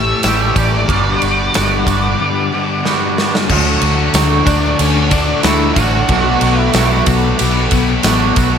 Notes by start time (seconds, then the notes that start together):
Already playing: A1 A2 E3 G3 A3 C#4 G4 E5 A5 C#6
0.23 A1 A2 E3 G3 C#4, snare, ride, tambourine
0.27 A3 G4
0.56 A1 G3 C#4 G4 D5, kick, ride, tambourine
0.89 G1 G2 D3 G3 B3 D4 F#4 F#5 B5 D6, kick, ride, tambourine
1.22 G1 B3 D4 F#4, ride, tambourine
1.54 G1 G2 D3 G3 B3 D4 F#4, snare, ride, tambourine
1.87 G1 B3 D4 F#4, kick, ride, tambourine
2.20 G2 D3 G3
2.53 G2 D3 G3
2.84 G2 D3 G3 B3 D4 F#4, snare
3.17 B3 D4 F#4, snare
3.35 snare
3.48 D2 D3 F#3 A3 D4 F#4 A4 F#5 C#6 D6, kick, crash
3.82 D2 A3 F#4, ride, tambourine
4.13 D2 D3 F#3 A3 D4, snare, ride, tambourine
4.17 F#4
4.46 D2 D4 F#4, kick, snare, ride, tambourine
4.50 A3
4.79 D2 D3 A3 C#4 D4, ride, tambourine
5.10 D3 D4, kick, ride, tambourine
5.15 A3
5.42 D2 D3 F#3 A3 E4 F#4, snare, ride, tambourine
5.47 D4
5.74 A1 F#4, kick, ride
5.78 A3 C#4, tambourine
6.09 B1 B2 F#3 A3 B3 D4 A4 F#5 B5 D6, kick, ride
6.13 F#4
6.41 B1 D4 F#4, ride, tambourine
6.46 A3
6.61 E4
6.73 B1 B2 F#3 A3 B3, snare, ride, tambourine
6.78 D4 F#4
7.06 B1 D4 F#4, kick, ride, tambourine
7.10 A3
7.38 B1 B2 F#3 B3, ride, tambourine
7.71 B1 B2 F#3 B3, kick, ride, tambourine
8.03 A1 B2 F#3 A3 B3 D4, snare, ride, tambourine
8.08 F#4
8.36 B1 D4 F#4, kick, ride, tambourine
8.41 A3